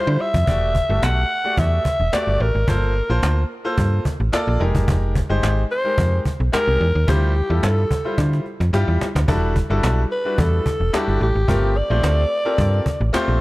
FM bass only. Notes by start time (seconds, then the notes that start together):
0.07 D3
0.34 F2
0.48 E1
0.90 G1
1.03 B1
1.58 E2
2.00 E1
2.27 G1
2.40 A1
2.55 G#1
2.68 G1
3.10 A#1
3.23 D2
3.78 G2
4.20 A1
4.48 A#1
4.61 F1
4.75 F#1
4.88 F1
5.30 G1
5.43 G#1
5.98 F2
6.40 B1
6.68 C2
6.81 E2
6.95 D#2
7.08 D2
7.50 E2
7.63 G2
8.18 D3
8.60 F2
8.73 G2
8.88 E2
9.15 D2
9.28 E1
9.70 G1
9.83 B1
10.38 E2
10.80 E1
11.08 G1
11.21 A1
11.35 G#1
11.48 G1
11.90 A#1
12.03 D2
12.58 G2
13.01 A1
13.28 A#1